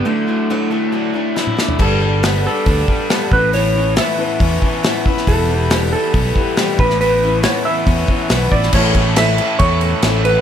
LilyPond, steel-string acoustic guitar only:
\new Staff \with { instrumentName = "Steel-string acoustic guitar" } { \time 4/4 \key a \mixolydian \tempo 4 = 138 <d fis a d' e'>8 <a d' e'>8 <d fis a d' e'>8 <a d' e'>8 <fis a d' e'>8 <a d' e'>8 <d fis a d' e'>8 <a d' e'>8 | <g b d' a'>8 <b d' a'>8 <g b d' a'>8 <b d' a'>8 <g b d' a'>8 <b d' a'>8 <g b d' a'>8 <b cis' e'>8 | <a, e b cis' e'>8 <b cis' e'>8 <a, e b cis' e'>8 <b cis' e'>8 <e b cis' e'>8 <b cis' e'>8 <a, e b cis' e'>8 <b cis' e'>8 | <e, b, e g b e'>8 <e g b e'>8 <e, b, e g b e'>8 <e g b e'>8 <e g b e'>8 <e g b e'>8 <e, b, e g b e'>8 <b cis' e'>8 |
<a, e b cis' e'>8 <b cis' e'>8 <a, e b cis' e'>8 <b cis' e'>8 <e b cis' e'>8 <b cis' e'>8 <a, e b cis' e'>8 <b cis' e'>8 | <a, e a cis' a'>8 <a cis' a'>8 <a, e a cis' a'>8 <a cis' a'>8 <e a cis' a'>8 <a cis' a'>8 <a, e a cis' a'>8 <a cis' a'>8 | }